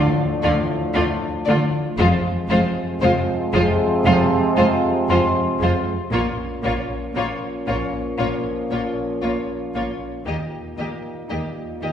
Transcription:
0.00 1.96 A2 medium
0.00 0.23 D3 medium
0.00 1.96 F3 medium
0.00 1.95 A3 medium
0.00 1.95 D4 medium
0.00 2.47 D5 medium
0.43 0.51 D2 medium
0.43 0.74 D3 medium
0.43 0.53 D3 medium
0.43 0.53 A3 medium
0.43 0.51 F4 medium
0.43 0.51 D5 medium
0.94 1.03 D2 medium
0.94 1.04 D3 medium
0.94 1.03 A3 medium
0.94 1.26 D4 medium
0.94 1.03 F4 medium
0.94 1.02 D5 medium
1.46 1.54 D2 medium
1.46 1.78 D3 medium
1.46 1.56 D3 medium
1.46 1.55 A3 medium
1.46 1.57 F4 medium
1.46 1.54 D5 medium
1.98 2.06 F1 medium
1.98 2.30 F2 medium
1.98 2.08 F2 medium
1.98 5.96 C3 medium
1.98 5.96 F3 medium
1.98 5.94 G#3 medium
1.98 2.08 G#3 medium
1.98 5.94 C4 medium
1.98 2.07 F4 medium
1.98 2.06 C5 medium
2.49 2.57 F1 medium
2.49 2.59 F2 medium
2.49 2.82 F2 medium
2.49 2.58 G#3 medium
2.49 2.58 F4 medium
2.49 2.57 C5 medium
3.01 3.09 F1 medium
3.01 3.11 F2 medium
3.01 3.34 F3 medium
3.01 3.10 G#3 medium
3.01 3.11 F4 medium
3.01 3.10 C5 medium
3.53 3.61 F1 medium
3.53 3.63 F2 medium
3.53 3.85 F3 medium
3.53 3.61 G#3 medium
3.53 3.62 F4 medium
3.53 3.62 C5 medium
4.05 4.13 F1 medium
4.05 4.37 F2 medium
4.05 4.14 F2 medium
4.05 4.13 G#3 medium
4.05 4.13 F4 medium
4.05 4.15 C5 medium
4.57 4.65 F1 medium
4.57 4.66 F2 medium
4.57 4.89 F2 medium
4.57 4.65 G#3 medium
4.57 4.65 F4 medium
4.57 4.65 C5 medium
5.09 5.17 F1 medium
5.09 5.18 F2 medium
5.09 5.41 F3 medium
5.09 5.17 G#3 medium
5.09 5.18 F4 medium
5.09 5.18 C5 medium
5.09 8.16 C6 medium
5.59 5.68 F1 medium
5.59 5.69 F2 medium
5.59 5.93 F2 medium
5.59 5.67 G#3 medium
5.59 5.70 F4 medium
5.59 5.70 C5 medium
6.11 6.20 A#1 medium
6.11 6.43 A#2 medium
6.11 6.21 A#2 medium
6.11 10.23 A#2 medium
6.11 10.23 F3 medium
6.11 10.22 A#3 medium
6.11 6.20 A#3 medium
6.11 10.22 C#4 medium
6.11 6.21 F4 medium
6.11 6.21 C#5 medium
6.63 6.72 A#1 medium
6.63 6.72 A#2 medium
6.63 6.96 A#2 soft
6.63 6.71 A#3 soft
6.63 6.73 F4 soft
6.63 6.73 C#5 soft
7.16 7.24 A#1 medium
7.16 7.24 A#2 medium
7.16 7.24 A#3 medium
7.16 7.47 A#3 soft
7.16 7.25 F4 medium
7.16 7.25 C#5 soft
7.67 7.76 A#1 medium
7.67 7.75 A#2 medium
7.67 7.75 A#3 soft
7.67 7.99 A#3 soft
7.67 7.76 F4 soft
7.67 7.77 C#5 soft
8.19 8.27 A#1 medium
8.19 8.27 A#2 soft
8.19 8.51 A#2 medium
8.19 8.27 A#3 soft
8.19 8.27 F4 soft
8.19 8.28 C#5 soft
8.71 8.79 A#1 soft
8.71 8.79 A#2 soft
8.71 9.03 A#2 soft
8.71 8.79 A#3 soft
8.71 8.80 F4 soft
8.71 8.80 C#5 soft
9.22 9.30 A#1 soft
9.22 9.31 A#2 soft
9.22 9.31 A#3 soft
9.22 9.54 A#3 soft
9.22 9.31 F4 soft
9.22 9.30 C#5 soft
9.74 9.82 A#1 soft
9.74 9.83 A#2 soft
9.74 10.06 A#2 soft
9.74 9.83 A#3 soft
9.74 9.83 F4 soft
9.74 9.83 C#5 soft
10.26 10.34 D#2 soft
10.26 11.92 A#2 soft
10.26 10.35 D#3 soft
10.26 10.58 D#3 soft
10.26 11.92 G3 soft
10.26 10.34 A#3 soft
10.26 11.92 A#3 soft
10.26 11.92 D#4 soft
10.26 10.34 G4 soft
10.26 10.36 D#5 soft
10.78 10.87 D#2 soft
10.78 11.09 D#3 soft
10.78 10.86 D#3 soft
10.78 10.87 A#3 soft
10.78 10.87 G4 soft
10.78 11.92 A#4 soft
10.78 10.87 D#5 soft
11.30 11.38 D#2 soft
11.30 11.38 D#3 soft
11.30 11.38 A#3 soft
11.30 11.61 D#4 soft
11.30 11.39 G4 soft
11.30 11.38 D#5 soft
11.82 11.90 D#2 soft
11.82 11.90 D#3 soft
11.82 11.90 A#3 soft
11.82 11.92 D#4 soft
11.82 11.91 G4 soft
11.82 11.91 D#5 soft

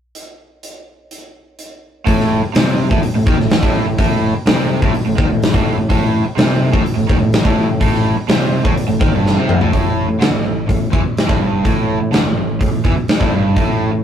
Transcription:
0.15 closed hi-hat medium
0.63 closed hi-hat medium
1.11 closed hi-hat medium
1.59 closed hi-hat medium
2.06 2.40 A1 medium
2.06 2.42 A2 loud
2.06 kick medium
2.06 open hi-hat medium
2.20 snare soft
2.44 muted picked electric bass stroke soft
2.44 muted overdriven electric guitar stroke medium
2.55 2.89 C2 medium
2.55 2.91 C3 loud
2.55 snare loud
2.55 open hi-hat medium
2.91 3.02 A1 medium
2.91 3.03 A2 loud
2.91 kick loud
3.03 muted overdriven electric guitar stroke medium
3.03 open hi-hat medium
3.16 3.26 A1 medium
3.16 3.28 A2 medium
3.26 3.38 D#2 medium
3.26 3.39 D#3 loud
3.26 kick loud
3.38 3.61 A1 medium
3.38 3.59 A2 medium
3.38 snare soft
3.50 snare loud
3.50 open hi-hat medium
3.62 3.85 A1 loud
3.62 3.87 A2 loud
3.62 kick loud
3.86 3.97 A1 medium
3.86 3.97 A2 medium
3.98 4.32 A1 medium
3.98 4.34 A2 loud
3.98 kick loud
3.98 open hi-hat medium
4.34 muted picked electric bass stroke soft
4.34 muted overdriven electric guitar stroke medium
4.46 4.79 C2 medium
4.46 4.82 C3 loud
4.46 snare loud
4.46 open hi-hat medium
4.82 4.93 A1 medium
4.82 4.94 A2 loud
4.82 kick loud
4.94 muted picked electric bass stroke soft
4.94 muted overdriven electric guitar stroke medium
4.94 open hi-hat medium
5.06 5.17 A1 medium
5.06 5.19 A2 medium
5.18 5.29 D#2 loud
5.18 5.30 D#3 loud
5.18 kick loud
5.30 5.53 A1 medium
5.30 5.49 A2 medium
5.42 snare loud
5.42 open hi-hat medium
5.54 5.76 A1 medium
5.54 5.76 A2 medium
5.54 kick loud
5.78 5.89 A1 medium
5.78 5.88 A2 medium
5.89 6.23 A1 loud
5.89 6.25 A2 loud
5.89 kick medium
5.89 open hi-hat medium
6.27 muted overdriven electric guitar stroke medium
6.37 6.71 C2 medium
6.37 6.73 C3 loud
6.37 snare loud
6.37 open hi-hat medium
6.73 6.85 A1 medium
6.73 6.85 A2 loud
6.73 kick loud
6.86 muted picked electric bass stroke soft
6.86 muted overdriven electric guitar stroke medium
6.86 open hi-hat medium
6.98 7.09 A1 medium
6.98 7.09 A2 medium
7.09 7.21 D#2 medium
7.09 7.20 D#3 medium
7.09 kick loud
7.20 7.44 A1 medium
7.20 7.40 A2 medium
7.33 snare loud
7.33 open hi-hat medium
7.45 7.67 A1 medium
7.45 7.68 A2 loud
7.45 kick loud
7.69 7.80 A1 medium
7.69 7.80 A2 medium
7.80 8.14 A1 loud
7.80 8.16 A2 loud
7.80 kick medium
7.80 open hi-hat medium
7.94 snare soft
8.17 muted overdriven electric guitar stroke medium
8.17 muted picked electric bass stroke soft
8.28 8.62 C2 medium
8.28 8.65 C3 loud
8.28 snare loud
8.28 open hi-hat medium
8.65 8.76 A1 medium
8.65 8.76 A2 loud
8.65 kick loud
8.77 muted overdriven electric guitar stroke medium
8.77 muted picked electric bass stroke soft
8.77 open hi-hat medium
8.88 9.00 A1 medium
8.88 9.00 A2 medium
9.00 9.12 D#2 medium
9.00 9.12 D#3 loud
9.00 kick loud
9.12 9.35 G1 medium
9.12 9.36 G2 loud
9.26 snare medium
9.36 9.59 C2 medium
9.36 9.60 C3 medium
9.49 mid tom medium
9.61 9.72 A1 medium
9.61 9.71 A2 loud
9.61 floor tom medium
9.72 10.06 A1 medium
9.72 10.07 A2 loud
9.72 kick medium
9.72 open hi-hat soft
10.08 10.20 A1 medium
10.08 10.19 A2 medium
10.19 10.31 D2 medium
10.19 10.31 D3 loud
10.19 snare loud
10.19 open hi-hat medium
10.31 10.43 A1 medium
10.31 10.42 A2 medium
10.43 10.67 A1 medium
10.43 10.63 A2 medium
10.67 10.91 A1 medium
10.67 10.87 A2 medium
10.67 kick medium
10.67 open hi-hat medium
10.91 11.03 E2 medium
10.91 11.03 E3 loud
10.91 kick loud
11.04 muted picked electric bass stroke soft
11.04 muted overdriven electric guitar stroke medium
11.17 snare medium
11.17 open hi-hat medium
11.27 11.39 A1 medium
11.27 11.39 A2 loud
11.27 kick loud
11.39 11.62 G1 medium
11.39 11.63 G2 loud
11.64 11.98 A1 medium
11.64 12.00 A2 loud
11.64 kick medium
11.64 open hi-hat soft
12.00 12.10 A1 medium
12.00 12.13 A2 medium
12.11 12.23 D2 medium
12.11 12.24 D3 loud
12.11 snare loud
12.11 open hi-hat medium
12.24 12.34 A1 medium
12.24 12.37 A2 medium
12.35 12.58 A1 medium
12.35 12.56 A2 medium
12.61 12.83 A1 medium
12.61 12.80 A2 medium
12.61 kick medium
12.61 open hi-hat medium
12.84 12.95 E2 medium
12.84 12.96 E3 medium
12.84 kick loud
12.96 muted picked electric bass stroke soft
12.96 muted overdriven electric guitar stroke medium
13.08 snare loud
13.08 open hi-hat medium
13.21 13.31 A1 medium
13.21 13.32 A2 medium
13.21 kick medium
13.32 13.54 G1 medium
13.32 13.56 G2 loud
13.56 13.90 A1 medium
13.56 13.91 A2 loud
13.56 kick medium
13.56 open hi-hat soft
13.92 14.03 A1 medium
13.92 14.03 A2 medium

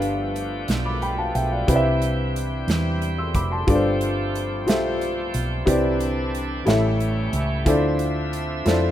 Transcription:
0.00 0.64 G1 medium
0.00 0.65 G2 medium
0.00 1.65 F3 soft
0.00 3.50 G3 medium
0.00 1.66 A3 soft
0.00 1.67 A3 soft
0.00 1.67 B3 soft
0.00 3.50 D4 medium
0.00 1.66 F4 medium
0.00 0.57 G4 medium
0.00 5.62 G4 medium
0.00 0.57 A4 medium
0.00 0.58 B4 medium
0.00 0.58 D5 medium
0.00 0.62 F5 medium
0.00 closed hi-hat medium
0.36 closed hi-hat medium
0.68 1.31 B1 medium
0.68 snare medium
0.68 closed hi-hat medium
0.85 1.01 B5 soft
0.85 1.01 D6 medium
1.02 1.18 G5 soft
1.02 1.18 B5 medium
1.02 closed hi-hat soft
1.18 1.34 F5 soft
1.18 1.34 A5 medium
1.35 1.66 B1 medium
1.35 1.51 E5 soft
1.35 1.51 G5 medium
1.35 closed hi-hat medium
1.51 1.68 D5 soft
1.51 1.83 F5 medium
1.67 2.64 C2 medium
1.67 2.64 C3 soft
1.67 3.66 E3 soft
1.67 3.66 G3 soft
1.67 6.63 C4 soft
1.67 2.56 E4 medium
1.67 3.50 E4 medium
1.67 2.56 G4 medium
1.67 2.57 B4 medium
1.67 2.57 C5 medium
1.67 1.75 D5 medium
1.67 kick medium
1.67 closed hi-hat medium
1.76 2.61 E5 medium
2.02 closed hi-hat soft
2.36 closed hi-hat medium
2.68 3.36 E2 medium
2.68 snare medium
2.68 closed hi-hat medium
3.02 closed hi-hat soft
3.18 3.34 C6 soft
3.18 3.34 E6 soft
3.34 3.65 F1 medium
3.34 3.51 B5 soft
3.34 3.50 D6 medium
3.34 kick medium
3.34 closed hi-hat medium
3.52 3.83 A5 soft
3.52 3.83 C6 medium
3.67 4.68 G1 medium
3.67 4.63 G2 medium
3.67 5.65 F3 medium
3.67 5.65 G3 medium
3.67 5.65 A3 soft
3.67 4.56 F4 medium
3.67 5.65 F4 medium
3.67 4.56 G4 medium
3.67 4.56 A4 medium
3.67 3.75 B4 soft
3.67 4.57 D5 medium
3.67 kick medium
3.67 closed hi-hat medium
3.75 4.60 C5 medium
4.01 closed hi-hat medium
4.36 closed hi-hat soft
4.66 5.30 B1 medium
4.66 5.55 F4 medium
4.66 5.56 G4 medium
4.66 5.56 A4 medium
4.66 5.57 C5 medium
4.66 5.57 E5 medium
4.66 snare medium
4.66 closed hi-hat medium
5.01 closed hi-hat soft
5.34 5.65 B1 medium
5.34 closed hi-hat medium
5.65 6.63 C2 medium
5.65 6.62 C3 medium
5.65 6.65 D3 medium
5.65 6.66 E3 medium
5.65 6.66 C4 medium
5.65 6.65 D4 soft
5.65 6.66 D4 medium
5.65 6.55 E4 medium
5.65 6.65 E4 medium
5.65 6.55 G4 medium
5.65 6.55 B4 medium
5.65 6.56 C5 medium
5.65 6.56 D5 medium
5.65 kick medium
5.65 closed hi-hat medium
6.00 closed hi-hat soft
6.35 closed hi-hat medium
6.65 7.29 A1 medium
6.65 7.62 A2 medium
6.65 7.65 E3 soft
6.65 7.65 G3 medium
6.65 7.65 A3 soft
6.65 7.65 A3 medium
6.65 7.65 C#4 medium
6.65 7.66 C#4 medium
6.65 7.54 E4 medium
6.65 7.55 G4 medium
6.65 7.65 G4 medium
6.65 7.55 A4 medium
6.65 7.55 C#5 medium
6.65 8.91 E5 medium
6.65 7.56 E5 medium
6.65 snare medium
6.65 closed hi-hat medium
7.00 closed hi-hat soft
7.33 7.63 C#2 medium
7.33 closed hi-hat medium
7.65 8.62 D2 medium
7.65 8.91 D3 medium
7.65 8.62 D3 medium
7.65 8.91 F3 medium
7.65 8.91 C4 soft
7.65 8.91 C4 medium
7.65 8.91 D4 medium
7.65 8.54 E4 medium
7.65 8.54 F4 medium
7.65 8.55 A4 medium
7.65 8.55 C5 medium
7.65 8.55 D5 medium
7.65 8.91 E5 medium
7.65 kick medium
7.65 closed hi-hat medium
7.99 closed hi-hat soft
8.33 closed hi-hat medium
8.65 8.91 F2 medium
8.65 8.91 E4 medium
8.65 8.91 F4 medium
8.65 8.91 A4 medium
8.65 8.91 C5 medium
8.65 8.91 D5 medium
8.65 snare medium
8.65 closed hi-hat medium

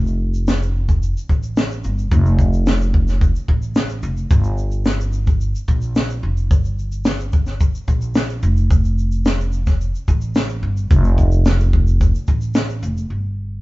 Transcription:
0.00 1.12 F1 loud
0.07 shaker soft
0.34 shaker medium
0.47 snare loud
0.47 shaker medium
0.63 shaker medium
0.89 kick medium
0.89 shaker soft
1.03 shaker medium
1.17 shaker medium
1.29 1.80 A1 medium
1.29 kick medium
1.29 shaker soft
1.43 shaker soft
1.56 snare loud
1.56 shaker medium
1.71 shaker soft
1.84 2.10 G1 medium
1.84 shaker medium
1.98 shaker soft
2.11 3.31 F1 loud
2.11 kick loud
2.11 shaker medium
2.26 shaker soft
2.39 kick medium
2.39 shaker soft
2.53 shaker medium
2.66 snare loud
2.66 shaker medium
2.81 shaker medium
2.94 kick medium
3.08 snare soft
3.08 shaker soft
3.21 kick loud
3.21 shaker medium
3.36 shaker medium
3.48 4.00 A1 medium
3.48 kick medium
3.62 shaker soft
3.75 snare loud
3.75 shaker medium
3.90 shaker soft
4.03 4.29 F1 medium
4.03 shaker medium
4.17 shaker soft
4.30 5.51 G1 loud
4.30 kick loud
4.30 shaker medium
4.44 shaker soft
4.58 shaker soft
4.71 shaker medium
4.85 snare loud
4.85 shaker medium
5.00 shaker medium
5.13 shaker medium
5.27 kick medium
5.27 shaker soft
5.41 shaker medium
5.55 shaker medium
5.68 6.19 A#1 medium
5.68 kick medium
5.68 shaker soft
5.82 shaker soft
5.95 snare medium
5.95 shaker medium
6.10 shaker medium
6.23 6.51 F1 medium
6.37 shaker soft
6.51 7.70 G1 loud
6.51 kick loud
6.51 shaker medium
6.65 shaker soft
6.79 shaker soft
6.92 shaker medium
7.05 snare loud
7.05 shaker medium
7.20 shaker medium
7.32 kick medium
7.32 shaker medium
7.46 snare soft
7.46 shaker soft
7.60 kick loud
7.60 shaker medium
7.75 shaker medium
7.88 8.39 A#1 medium
7.88 kick medium
7.88 shaker soft
8.01 shaker soft
8.15 snare loud
8.15 shaker medium
8.30 shaker medium
8.43 9.90 F1 loud
8.43 shaker medium
8.57 shaker soft
8.71 kick loud
8.71 shaker medium
8.85 shaker soft
8.98 shaker soft
9.12 shaker medium
9.25 snare loud
9.25 shaker medium
9.40 shaker medium
9.52 shaker medium
9.66 kick medium
9.66 snare soft
9.66 shaker soft
9.81 shaker medium
9.95 shaker medium
10.08 10.59 A1 medium
10.08 kick medium
10.08 shaker soft
10.21 shaker soft
10.35 snare loud
10.35 shaker medium
10.49 shaker medium
10.63 10.88 G1 medium
10.77 shaker soft
10.91 12.11 F1 loud
10.91 kick loud
10.91 shaker medium
11.04 shaker soft
11.18 kick medium
11.18 shaker soft
11.32 shaker medium
11.45 snare loud
11.45 shaker medium
11.60 shaker medium
11.73 kick medium
11.87 shaker soft
12.01 kick loud
12.01 shaker medium
12.15 shaker medium
12.27 12.79 A1 medium
12.27 kick medium
12.27 shaker soft
12.41 shaker soft
12.54 snare loud
12.54 shaker medium
12.69 shaker medium
12.83 13.08 F1 medium
12.83 shaker medium
12.97 shaker soft
13.10 13.62 G1 medium

